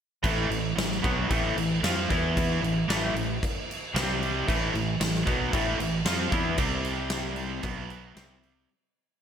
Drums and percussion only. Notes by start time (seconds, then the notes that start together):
0.24 kick, crash
0.51 crash
0.78 snare, crash
0.92 snare
1.04 kick, crash
1.30 kick, crash
1.58 crash
1.84 snare, crash
2.10 kick, crash
2.37 kick, crash
2.64 crash
2.90 snare, crash
3.16 crash
3.43 kick, crash
3.71 crash
3.96 snare, crash
4.23 crash
4.48 kick, crash
4.75 crash
5.01 snare, crash
5.14 snare
5.27 kick, crash
5.53 kick, crash
5.80 crash
6.05 snare, crash
6.32 kick, crash
6.58 kick, crash
6.85 crash
7.10 snare, crash
7.36 crash
7.63 kick, crash
7.90 crash
8.16 snare, crash
8.43 crash